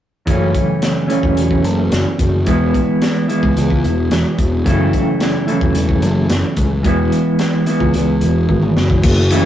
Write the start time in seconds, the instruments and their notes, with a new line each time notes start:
0.26 picked electric bass F#1, clean electric guitar F#2 C#3 E3 A3 C#4, kick, closed hi-hat
0.54 kick, closed hi-hat
0.82 snare, closed hi-hat
1.08 clean electric guitar F#2 C#3 E3 A3 C#4, closed hi-hat
1.23 picked electric bass E1, kick
1.37 picked electric bass E1, closed hi-hat
1.51 kick
1.64 picked electric bass F#1, closed hi-hat
1.91 picked electric bass F#1, snare, closed hi-hat
2.19 picked electric bass F#1, kick, closed hi-hat
2.46 picked electric bass E1, clean electric guitar E3 G#3 B3 E4, kick, closed hi-hat
2.74 kick, closed hi-hat
3.02 snare, closed hi-hat
3.28 clean electric guitar E3 G#3 B3 E4, closed hi-hat
3.43 picked electric bass C#2, kick
3.56 picked electric bass C#2, closed hi-hat
3.70 kick
3.84 picked electric bass E1, closed hi-hat
4.11 picked electric bass E1, snare, closed hi-hat
4.38 picked electric bass E1, kick, closed hi-hat
4.65 picked electric bass F#1, clean electric guitar F#2 C#3 E3 A3 E4, kick, closed hi-hat
4.93 kick, closed hi-hat
5.20 snare, closed hi-hat
5.47 clean electric guitar F#2 C#3 E3 A3 E4, closed hi-hat
5.61 picked electric bass E1, kick
5.75 picked electric bass E1, closed hi-hat
5.89 kick
6.02 picked electric bass F#1, closed hi-hat
6.29 picked electric bass F#1, snare, closed hi-hat
6.56 picked electric bass C#2, kick, closed hi-hat
6.83 picked electric bass E1, clean electric guitar E3 G#3 B3 E4, kick, closed hi-hat
7.12 closed hi-hat
7.39 snare, closed hi-hat
7.66 clean electric guitar E3 G#3 B3 E4, closed hi-hat
7.80 picked electric bass C#2, kick
7.94 picked electric bass C#2, closed hi-hat
8.21 picked electric bass E1, closed hi-hat
8.49 picked electric bass G#1, kick
8.63 mid tom
8.76 picked electric bass F#1, snare
8.90 kick
9.03 picked electric bass F#1, kick, crash, shaker
9.17 muted clean electric guitar stroke
9.30 clean electric guitar C#3 E3 A3 E4, ride, shaker